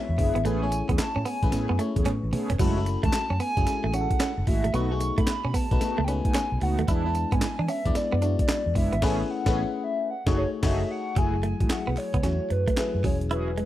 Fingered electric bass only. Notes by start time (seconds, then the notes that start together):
0.09 E2
0.19 F#1
0.36 G#1
0.46 A1
0.89 E2
0.99 muted fingered electric bass stroke
1.16 A2
1.43 A1
1.52 A2
1.70 F#2
1.96 E2
2.06 A2
2.23 A1
2.50 E1
2.60 F#1
3.04 E2
3.30 F#2
3.57 F#1
3.67 muted fingered electric bass stroke
3.84 A1
4.38 F#1
4.47 G#1
4.65 A1
4.74 B1
5.18 A2
5.28 muted fingered electric bass stroke
5.45 B2
5.71 B1
5.99 C#2
6.52 B1
6.62 C#2
6.79 D#2
6.88 E2
7.32 G#2
7.42 muted fingered electric bass stroke
7.59 E3
7.86 E2
8.13 F#2
8.66 E2
8.76 F#1
8.93 G#1
9.02 A1
9.46 A1
10.27 F#1
10.63 F#1
11.17 F#1
11.61 A1
11.71 muted fingered electric bass stroke
11.88 B1
12.14 C#2
12.24 E2
12.51 F#2
12.95 F#2
13.04 E1